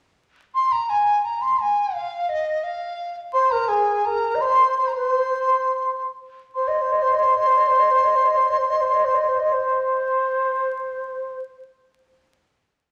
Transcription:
0.55 C6
0.72 A#5
0.89 G#5
1.25 A#5
1.42 C6
1.62 G#5
1.95 F5
2.29 D#5
2.64 F5
3.33 C5 C6
3.51 A#4 A#5
3.68 G#4 G#5
4.05 A#4 A#5
4.35 D#5
4.41 C5 C6
4.78 C5 C6
4.88 A#5
4.93 B4 C6
5.08 C5
6.55 C5 C6
6.67 D#5
6.81 C5
6.92 D#5
7.02 C5
7.12 D#5
7.23 C5
7.36 D#5
7.46 C5
7.57 D#5
7.67 C5
7.79 D#5
7.90 C5
8.04 D#5
8.15 C5
8.25 D#5
8.37 C5
8.50 D#5
8.58 C5
8.70 D#5
8.81 C5
8.93 D#5
9.04 C5
9.15 D#5
9.28 C5
9.39 D#5
9.49 C5 D#5

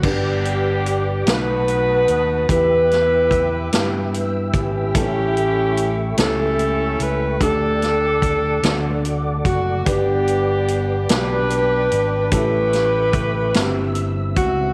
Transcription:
0.02 G1 G2 B3 D4 G4 B4 D5 G5 D6, kick, crash
0.08 G4
0.45 closed hi-hat
0.86 closed hi-hat
1.26 B1 B2 A3 B3 D#4 F#4 B4 F#5 A5 D#6, snare, closed hi-hat
1.68 closed hi-hat
2.08 D#2, closed hi-hat
2.49 E2 E3 B3 E4 G4 B4 E5 G5 E6, kick, closed hi-hat
2.91 snare, closed hi-hat
3.31 kick, closed hi-hat
3.72 G2 B3 E4 G4, snare, closed hi-hat
4.14 closed hi-hat
4.53 G#1 C#4 E4 G4, kick, closed hi-hat
4.95 A1 A2 G3 A3 B3 E4 A4 C#6, kick, closed hi-hat
5.01 C#4
5.37 closed hi-hat
5.77 closed hi-hat
6.17 C#2 G3 A3 C#4 E4 A4, snare, closed hi-hat
6.59 closed hi-hat
7.00 C#2 B4, closed hi-hat
7.40 D2 D3 A3 D4 G4 A4 D5 D6, kick, closed hi-hat
7.82 snare, closed hi-hat
8.22 kick, closed hi-hat
8.63 D2 D3 A3 D4 F#4 A4 F#5, snare, closed hi-hat
9.05 closed hi-hat
9.45 F#1 F#4, kick, closed hi-hat
9.85 G1 G2 B3 D4 G4 B4 D5 G5 D6, kick, closed hi-hat
10.27 closed hi-hat
10.68 closed hi-hat
11.09 B1 B3 D4 F#4 G4 B4, snare, closed hi-hat
11.17 G4
11.50 closed hi-hat
11.91 G#1, closed hi-hat
12.31 A1 A2 G3 A3 C#4 E4 G4 A4 B4 E5 C#6, kick, closed hi-hat
12.73 snare, closed hi-hat
13.13 kick, closed hi-hat
13.54 G1 G2 C4 E4 F#4 E6, snare, closed hi-hat
13.62 G4
13.95 closed hi-hat
14.36 C#2 F#4, kick, closed hi-hat

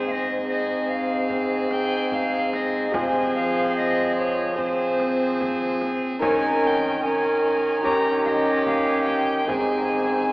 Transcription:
Already playing: G#2 C4 G#4 C5
0.07 F5
0.12 D#5
0.47 C4 G#4 D#5
0.89 F5
1.30 frame drum
1.71 G5, frame drum
2.12 F5, frame drum
2.53 D#5, frame drum
2.91 C3 F3 C4 G#4 G#5, frame drum
3.35 F5
3.77 D#5
4.18 C#5
4.54 C4 G#4 C5
4.59 C4 G#4, frame drum
5.00 frame drum
5.41 frame drum
5.82 frame drum
6.19 D#3 C#4 D#4 A#4 C#5 G#5, frame drum
6.63 G5 G#5
7.03 C#4 A#4 G#5
7.44 G#5
7.81 D#4 G4 C#5 A#5, frame drum
7.86 C#4
8.25 D#5 F5, frame drum
8.66 F5, frame drum
9.07 G5, frame drum
9.46 G#2 C4 D#4 G#4 D#5 G#5, frame drum

